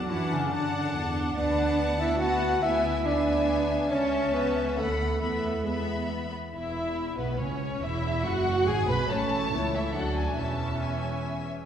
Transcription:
0.00 0.10 E2 medium
0.00 0.10 F#3 medium
0.00 0.12 F#4 medium
0.10 0.94 F#2 medium
0.10 0.31 E3 medium
0.10 0.51 D4 medium
0.10 0.32 E4 medium
0.10 0.51 F#5 medium
0.10 0.52 A5 medium
0.31 0.53 C#3 medium
0.31 0.54 C#4 medium
0.52 1.15 D3 medium
0.52 1.35 D4 medium
0.52 1.16 D4 medium
0.52 1.35 F#5 medium
0.52 1.36 A5 medium
0.95 1.37 E2 medium
1.36 2.61 D2 medium
1.36 2.20 B3 medium
1.36 1.96 D4 medium
1.36 2.02 D5 medium
1.36 2.19 F#5 medium
1.36 2.19 A5 medium
2.00 2.20 E4 medium
2.00 2.20 E5 medium
2.21 2.61 B3 medium
2.21 2.62 F#4 medium
2.21 2.62 F#5 medium
2.21 2.62 A5 medium
2.63 3.89 D2 medium
2.63 3.05 B3 medium
2.63 3.05 E4 medium
2.63 3.08 E5 loud
2.63 3.05 E5 medium
2.63 3.05 G#5 medium
3.06 3.90 B3 medium
3.06 3.91 D4 medium
3.06 3.90 D5 medium
3.06 3.90 E5 medium
3.06 3.89 G#5 medium
3.91 4.76 C#2 medium
3.91 4.33 C#4 medium
3.91 4.76 C#4 medium
3.91 4.35 C#5 medium
3.91 4.76 E5 medium
3.91 4.78 A5 medium
4.34 4.77 B3 medium
4.34 4.77 B4 medium
4.77 5.21 D2 medium
4.77 5.20 A3 medium
4.77 5.20 B3 medium
4.77 5.21 A4 medium
4.77 5.21 F#5 medium
4.77 5.20 B5 medium
5.21 6.33 E2 medium
5.21 5.64 A3 medium
5.21 5.63 B3 medium
5.21 5.67 A4 medium
5.21 5.64 E5 soft
5.21 5.65 B5 soft
5.65 6.09 G#3 soft
5.65 6.32 B3 medium
5.65 6.09 G#4 medium
5.65 6.32 E5 medium
5.65 6.32 B5 soft
6.54 7.14 E1 soft
6.54 7.15 E2 medium
6.54 7.15 E4 soft
6.54 7.15 E4 medium
6.54 7.14 E5 medium
7.18 7.40 B1 medium
7.18 7.40 B2 soft
7.18 7.40 B3 soft
7.18 7.39 B4 medium
7.39 7.83 C#2 soft
7.39 7.82 C#4 soft
7.39 7.82 C#5 medium
7.82 8.24 E1 medium
7.82 8.24 E2 medium
7.82 8.24 E4 medium
7.82 8.25 E4 medium
7.82 8.25 E5 medium
8.24 8.68 F#1 medium
8.24 8.67 F#2 medium
8.24 8.67 F#4 medium
8.24 8.68 F#4 medium
8.24 8.67 F#5 medium
8.67 8.89 G#1 medium
8.67 8.89 G#2 medium
8.67 8.89 G#4 medium
8.67 8.75 G#4 medium
8.67 8.89 G#5 medium
8.88 9.10 B1 medium
8.88 9.10 B2 medium
8.88 9.09 B4 medium
8.88 9.10 B4 medium
8.88 9.09 B5 medium
9.09 9.49 A1 medium
9.09 9.49 A2 medium
9.09 9.17 F#3 medium
9.09 9.49 A3 medium
9.09 9.49 C#4 soft
9.09 9.91 C#5 medium
9.09 9.74 A5 medium
9.31 9.51 E3 soft
9.52 9.95 C#2 medium
9.52 9.95 C#2 soft
9.52 9.94 E3 soft
9.52 9.74 B3 medium
9.52 9.94 E4 soft
9.73 9.94 A3 soft
9.73 9.95 E5 medium
9.94 10.38 D2 soft
9.94 10.38 F#3 soft
9.94 10.37 A3 soft
9.94 10.38 D4 soft
9.94 10.38 A4 soft
9.94 10.17 F#5 medium
10.16 10.37 G#5 medium
10.37 11.46 E1 soft
10.37 11.46 E2 soft
10.37 11.48 E3 soft
10.37 11.48 C#4 soft
10.37 11.46 E5 soft
10.37 10.82 A5 medium
10.82 11.47 G#5 soft

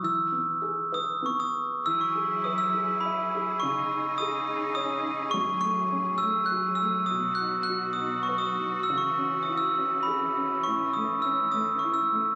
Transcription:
0.03 1.81 E3 medium
0.03 1.21 E6 medium
0.32 1.21 B3 soft
0.62 1.81 G#4 soft
0.92 1.82 B4 medium
0.92 1.26 D#6 medium
1.22 1.83 B3 soft
1.22 1.39 C#6 medium
1.40 1.82 D#6 medium
1.85 3.59 E3 medium
1.85 3.61 F#3 medium
1.85 3.61 E4 medium
1.85 7.06 G#4 medium
1.85 2.01 E6 medium
2.01 2.42 C#6 medium
2.15 2.73 G#4 soft
2.44 3.59 B4 soft
2.44 2.51 D#6 medium
2.58 3.05 E6 medium
2.74 3.33 G#4 medium
3.00 3.62 B5 medium
3.05 3.61 E5 medium
3.35 3.62 G#4 soft
3.60 5.30 C#3 medium
3.60 4.14 C#6 medium
3.64 5.33 C#3 medium
3.64 5.34 D#4 medium
3.92 4.48 D#4 soft
4.18 5.31 G#4 medium
4.18 4.72 D#6 medium
4.49 5.04 D#4 medium
4.75 5.32 C#5 medium
4.75 5.16 D#6 medium
5.05 5.33 D#4 medium
5.31 7.06 F#2 medium
5.31 5.59 C#6 medium
5.36 7.09 A2 medium
5.36 8.86 F#3 medium
5.61 6.21 A3 medium
5.61 6.22 C#6 medium
5.92 7.06 C#4 medium
6.18 6.50 E6 medium
6.23 6.80 A3 medium
6.46 6.76 F#6 medium
6.52 7.08 F#4 medium
6.75 7.05 E6 medium
6.82 7.10 A3 soft
7.06 8.86 B2 medium
7.06 10.62 F#4 medium
7.06 7.38 D#6 medium
7.11 8.85 B2 medium
7.35 7.62 F#6 medium
7.40 7.98 D#4 soft
7.63 7.94 F#6 medium
7.70 8.85 F#4 medium
7.93 8.27 D#6 medium
8.00 8.58 D#4 soft
8.23 8.41 C#6 medium
8.29 8.86 B4 medium
8.38 8.82 D#6 medium
8.59 8.88 D#4 soft
8.83 9.01 E6 medium
8.88 10.63 C#3 medium
8.88 12.35 E3 medium
8.88 12.35 C#4 medium
8.98 9.46 C#6 medium
9.18 9.77 C#4 soft
9.43 9.59 D#6 medium
9.48 10.63 E4 soft
9.57 10.06 E6 medium
9.78 10.36 C#4 soft
10.03 10.60 B5 medium
10.07 10.64 G#4 medium
10.37 10.65 C#4 soft
10.64 12.35 A2 medium
10.64 10.92 C#6 medium
10.93 11.53 A3 soft
10.93 11.24 D#6 medium
11.22 12.35 C#4 medium
11.22 11.50 E6 medium
11.52 12.11 A3 medium
11.52 11.82 D#6 medium
11.79 11.95 C#6 medium
11.84 12.35 E4 medium
11.94 12.35 E6 medium
12.12 12.35 A3 soft

